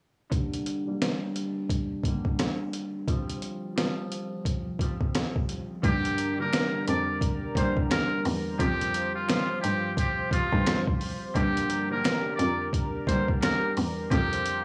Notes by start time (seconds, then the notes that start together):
0.30 D3 G3 A#3 D4 G4, kick, closed hi-hat
0.53 closed hi-hat
0.66 closed hi-hat
0.86 D3 G3 A#3 D4 G4
1.02 snare, closed hi-hat
1.36 closed hi-hat
1.69 kick, closed hi-hat
2.04 D3 G3 A#3 D4 G4, kick, closed hi-hat
2.25 kick
2.39 snare, closed hi-hat
2.73 closed hi-hat
3.07 F3 G3 C4 F4 G4, kick, closed hi-hat
3.29 closed hi-hat
3.42 closed hi-hat
3.76 F3 G3 C4 F4 G4, snare, closed hi-hat
4.12 closed hi-hat
4.45 kick, closed hi-hat
4.79 F3 G3 C4 F4 G4, kick, closed hi-hat
5.01 kick
5.15 snare, closed hi-hat
5.36 kick
5.49 closed hi-hat
5.82 G2 D3 G3 A#3 D4 G4 A#4 D5 A#5, kick, closed hi-hat
6.05 closed hi-hat
6.18 closed hi-hat
6.38 D3 G3 A#3 D4 G4 A#4
6.53 finger snap, snare, closed hi-hat
6.87 F2 D5, closed hi-hat
7.21 kick, closed hi-hat
7.55 G2 D3 G3 A#3 D4 G4 C5, kick, closed hi-hat
7.77 kick
7.91 A#4, finger snap, snare, closed hi-hat
8.25 E2, open hi-hat
8.59 F2 F3 G3 C4 F4 G4 C5 F5 C6, kick, closed hi-hat
8.81 closed hi-hat
8.94 closed hi-hat
9.15 F4
9.27 F3 G3 C4 F4 G4, finger snap, snare, closed hi-hat
9.61 G2 G4, closed hi-hat
9.97 G4, kick, closed hi-hat
10.31 F3 G3 C4 F4 G4, kick, closed hi-hat
10.53 G2, kick
10.67 finger snap, snare, closed hi-hat
10.88 kick
11.01 open hi-hat
11.34 G2 D3 G3 A#3 D4 G4 A#4 D5 A#5, kick, closed hi-hat
11.57 closed hi-hat
11.70 closed hi-hat
11.90 D3 G3 A#3 D4 G4 A#4
12.05 finger snap, snare, closed hi-hat
12.36 F2 D5, closed hi-hat
12.73 kick, closed hi-hat
13.07 G2 D3 G3 A#3 D4 G4 C5, kick, closed hi-hat
13.28 kick
13.42 A#4, finger snap, snare, closed hi-hat
13.77 E2, open hi-hat
14.11 F2 F3 G3 C4 F4 G4 C5 F5 C6, kick, closed hi-hat
14.33 closed hi-hat
14.46 closed hi-hat